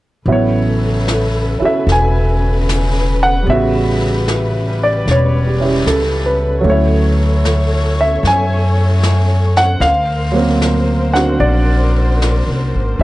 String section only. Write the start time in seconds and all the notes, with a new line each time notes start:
0.26 C#3 A4 B4
3.47 G3
6.64 A4 C#5
9.82 A#4 C5
12.99 B3 A4